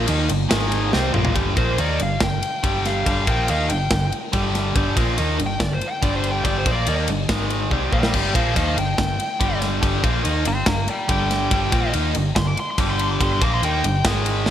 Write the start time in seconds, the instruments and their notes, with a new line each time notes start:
0.07 fingered electric bass D#2, overdriven electric guitar D#3 A#3 D#4, ride
0.29 fingered electric bass G1, overdriven electric guitar G2 D3, ride
0.49 fingered electric bass G#1, overdriven electric guitar G#2 D#3 G#3, snare, ride
0.72 ride
0.93 fingered electric bass C2, overdriven electric guitar C3 G3 C4, snare
1.13 fingered electric bass A#1, overdriven electric guitar A#2 F3 A#3, mid tom
1.25 floor tom
1.34 fingered electric bass G1, overdriven electric guitar G2 D3 G3, kick, ride
1.56 fingered electric bass A#1, overdriven electric guitar A#2 F3 A#3, lead electric guitar C5, kick, ride
1.78 fingered electric bass D#2, overdriven electric guitar D#3 A#3 D#4, lead electric guitar D5, ride
2.00 fingered electric bass G1, overdriven electric guitar G2 D3, lead electric guitar F5, ride
2.21 fingered electric bass G1, overdriven electric guitar G2 D3, lead electric guitar G5, kick, snare, ride
2.43 ride
2.63 fingered electric bass G1, overdriven electric guitar G2 D3 G3, kick, ride
2.85 lead electric guitar F5, snare, ride
3.05 fingered electric bass G1, overdriven electric guitar G2 D3 G3, lead electric guitar F5, kick, ride
3.27 fingered electric bass A#1, overdriven electric guitar A#2 F3 A#3, lead electric guitar G5, kick, ride
3.48 fingered electric bass D#2, overdriven electric guitar D#3 A#3 D#4, lead electric guitar F5, ride
3.70 fingered electric bass G1, overdriven electric guitar G2 D3, lead electric guitar G5, ride
3.91 fingered electric bass G1, overdriven electric guitar G2 D3, kick, snare, ride
4.12 ride
4.33 fingered electric bass G1, overdriven electric guitar G2 D3 G3, kick, ride
4.55 snare, ride
4.75 fingered electric bass G1, overdriven electric guitar G2 D3 G3, kick, ride
4.96 fingered electric bass A#1, overdriven electric guitar A#2 F3 A#3, kick, ride
5.17 fingered electric bass D#2, overdriven electric guitar D#3 A#3 D#4, ride
5.39 fingered electric bass G1, overdriven electric guitar G2 D3, ride
5.47 lead electric guitar G5
5.60 fingered electric bass G1, overdriven electric guitar G2 D3, lead electric guitar D5, kick, snare, ride
5.74 lead electric guitar C5
5.81 ride
5.88 lead electric guitar G5
6.02 fingered electric bass G1, overdriven electric guitar G2 D3 G3, lead electric guitar D5, kick, ride
6.16 lead electric guitar C5
6.24 ride
6.31 lead electric guitar G5
6.44 fingered electric bass G1, overdriven electric guitar G2 D3 G3, lead electric guitar D5, kick, ride
6.58 lead electric guitar C5
6.66 fingered electric bass A#1, overdriven electric guitar A#2 F3 A#3, kick, ride
6.71 lead electric guitar D5
6.87 fingered electric bass D#2, overdriven electric guitar D#3 A#3 D#4, ride
7.08 fingered electric bass G1, overdriven electric guitar G2 D3, ride
7.29 fingered electric bass G#1, overdriven electric guitar G#2 D#3 G#3, kick, snare, ride
7.50 ride
7.71 fingered electric bass C2, overdriven electric guitar C3 G3 C4, kick
7.91 fingered electric bass A#1, overdriven electric guitar A#2 F3 A#3, lead electric guitar D5 G5, kick
8.03 snare
8.13 fingered electric bass G1, overdriven electric guitar G2 D3 G3, lead electric guitar D5 G5, kick, crash
8.34 fingered electric bass A#1, overdriven electric guitar A#2 F3 A#3, lead electric guitar C5 F5, kick, ride
8.55 fingered electric bass D#2, overdriven electric guitar D#3 A#3 D#4, lead electric guitar C5 F5, kick, ride
8.76 fingered electric bass G1, overdriven electric guitar G2 D3, lead electric guitar G5, ride
8.98 fingered electric bass G1, overdriven electric guitar G2 D3, kick, snare, ride
9.20 ride
9.40 fingered electric bass G1, overdriven electric guitar G2 D3 G3, kick, ride
9.62 snare, ride
9.81 fingered electric bass G1, overdriven electric guitar G2 D3 G3, kick, ride
10.03 fingered electric bass A#1, overdriven electric guitar A#2 F3 A#3, kick, ride
10.23 fingered electric bass D#2, overdriven electric guitar D#3 A#3 D#4, ride
10.45 fingered electric bass G1, overdriven electric guitar G2 D3, lead electric guitar G5 C6, ride
10.66 fingered electric bass G1, overdriven electric guitar G2 D3, lead electric guitar F5 A#5, kick, snare, ride
10.88 lead electric guitar D5 G5, ride
11.09 fingered electric bass G1, overdriven electric guitar G2 D3 G3, lead electric guitar G5, kick, ride
11.31 snare, ride
11.51 fingered electric bass G1, overdriven electric guitar G2 D3 G3, kick, ride
11.72 fingered electric bass A#1, overdriven electric guitar A#2 F3 A#3, kick, ride
11.93 fingered electric bass D#2, overdriven electric guitar D#3 A#3 D#4, ride
12.14 fingered electric bass G1, overdriven electric guitar G2 D3, ride
12.36 fingered electric bass G1, overdriven electric guitar G2 D3, lead electric guitar C6, kick, snare, ride
12.47 lead electric guitar D6
12.57 lead electric guitar C6, ride
12.71 lead electric guitar C6
12.78 fingered electric bass G1, overdriven electric guitar G2 D3 G3, lead electric guitar D6, kick, ride
12.91 lead electric guitar C6
12.99 lead electric guitar C6, ride
13.11 lead electric guitar D6
13.21 fingered electric bass G1, overdriven electric guitar G2 D3 G3, lead electric guitar C6, kick, ride
13.32 lead electric guitar C6
13.41 fingered electric bass A#1, overdriven electric guitar A#2 F3 A#3, lead electric guitar D6, kick, ride
13.54 lead electric guitar C6
13.62 fingered electric bass D#2, overdriven electric guitar D#3 A#3 D#4, lead electric guitar G5, ride
13.84 fingered electric bass G1, overdriven electric guitar G2 D3, ride
14.05 fingered electric bass G#1, overdriven electric guitar G#2 D#3 G#3, kick, snare, ride
14.26 ride
14.46 snare